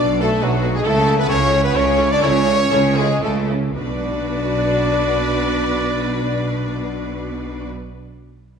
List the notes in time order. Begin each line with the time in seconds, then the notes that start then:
Already playing: B1 D4 D5
0.00 B1 B2
0.20 A3 F#4 A4 B4
0.41 B1 B2 F#3 F#4 B4
0.63 F#4 B4
0.75 G#3 G#4
0.85 C#2 C#3 A3 E4 A4
1.07 E4 A4
1.18 B3 B4
1.29 C#2 C#3 C#4 E4 A4 C#5
1.52 E4 A4
1.64 B3 B4
1.74 C#2 C#3 C#4 E4 A4 C#5
1.97 E4 A4
2.11 D4 D5
2.21 C#2 C#3 C#4 E4 A4 C#5
2.46 E4 A4
2.70 C#2 C#3 E4 A4
2.96 G#3 E4 G#4 A4
3.21 C#2 C#3 A3 E4 A4
3.48 E4 A4
3.75 B1 B2 D4 F#4 B4 D5